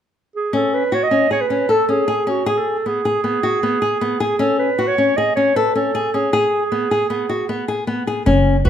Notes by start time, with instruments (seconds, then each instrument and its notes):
0.36 clarinet G#4
0.53 nylon-string guitar C#4, clarinet A4
0.74 clarinet B4
0.92 nylon-string guitar F#4, clarinet C#5
1.03 clarinet D#5
1.11 nylon-string guitar C#4
1.31 nylon-string guitar G#4, clarinet C#5
1.41 clarinet B4
1.50 nylon-string guitar C#4
1.69 nylon-string guitar A4, clarinet A4
1.89 nylon-string guitar C#4, clarinet G#4
2.08 nylon-string guitar G#4
2.27 nylon-string guitar C#4, clarinet F#4
2.46 nylon-string guitar G#4, clarinet G#4
2.58 clarinet A4
2.86 nylon-string guitar B3, clarinet G#4
3.05 nylon-string guitar G#4
3.24 nylon-string guitar B3
3.43 nylon-string guitar F#4
3.63 nylon-string guitar B3
3.82 nylon-string guitar G#4
4.01 nylon-string guitar B3
4.20 nylon-string guitar G#4, clarinet G#4
4.39 nylon-string guitar C#4, clarinet A4
4.59 clarinet B4
4.79 nylon-string guitar F#4
4.88 clarinet C#5
4.98 nylon-string guitar C#4
5.17 nylon-string guitar G#4, clarinet D#5
5.35 nylon-string guitar C#4, clarinet C#5
5.56 nylon-string guitar A4, clarinet B4
5.75 nylon-string guitar C#4, clarinet A4
5.95 nylon-string guitar G#4
6.14 nylon-string guitar C#4, clarinet G#4
6.33 nylon-string guitar G#4
6.72 nylon-string guitar B3
6.91 nylon-string guitar G#4
7.10 nylon-string guitar B3
7.29 nylon-string guitar F#4
7.49 nylon-string guitar B3
7.68 nylon-string guitar G#4
7.87 nylon-string guitar B3
8.07 nylon-string guitar G#4
8.26 upright bass F#1, nylon-string guitar C#4
8.65 upright bass C#2, nylon-string guitar F#4, clarinet B4